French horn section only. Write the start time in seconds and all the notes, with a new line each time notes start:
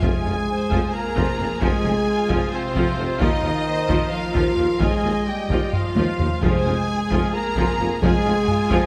0.03 G#3
0.93 A#3
1.63 G#3
2.53 C3
3.21 D#3
4.11 F3
4.80 G#3
5.27 G3
5.72 F3
6.40 G#3
7.33 A#3
8.01 G#3